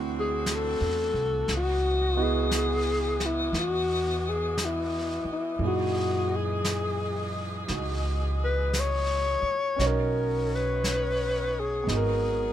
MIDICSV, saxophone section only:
0, 0, Header, 1, 2, 480
1, 0, Start_track
1, 0, Tempo, 1025641
1, 698, Time_signature, 4, 2, 24, 8
1, 2624, Tempo, 1043478
1, 5808, End_track
2, 0, Start_track
2, 0, Title_t, "Saxophone section"
2, 0, Program_c, 0, 65
2, 0, Note_on_c, 0, 52, 62
2, 0, Note_on_c, 0, 60, 54
2, 0, Note_on_c, 0, 62, 57
2, 0, Note_on_c, 0, 66, 65
2, 617, Note_off_c, 0, 60, 0
2, 617, Note_off_c, 0, 62, 0
2, 696, Note_on_c, 0, 59, 51
2, 698, Note_on_c, 0, 75, 57
2, 2605, Note_off_c, 0, 59, 0
2, 2605, Note_off_c, 0, 66, 0
2, 2630, Note_on_c, 0, 56, 50
2, 2630, Note_on_c, 0, 68, 65
2, 4462, Note_off_c, 0, 52, 0
2, 4462, Note_off_c, 0, 56, 0
2, 4462, Note_off_c, 0, 68, 0
2, 4462, Note_off_c, 0, 75, 0
2, 4540, Note_on_c, 0, 51, 55
2, 4543, Note_on_c, 0, 59, 52
2, 4543, Note_on_c, 0, 73, 57
2, 4544, Note_on_c, 0, 61, 50
2, 5496, Note_off_c, 0, 51, 0
2, 5498, Note_off_c, 0, 61, 0
2, 5498, Note_off_c, 0, 73, 0
2, 5517, Note_on_c, 0, 68, 72
2, 5518, Note_on_c, 0, 54, 57
2, 5808, Note_off_c, 0, 54, 0
2, 5808, Note_off_c, 0, 59, 0
2, 5808, Note_off_c, 0, 68, 0
2, 5808, End_track
0, 0, End_of_file